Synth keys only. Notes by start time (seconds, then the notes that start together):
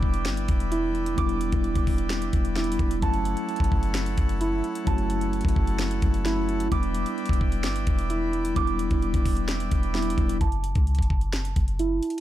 Already playing: D6
0.72 E4
1.18 D6
2.56 E4
3.02 A5
4.41 E4
4.87 A5
6.25 E4
6.72 D6
8.10 E4
8.56 D6
9.95 E4
10.41 A5
11.79 E4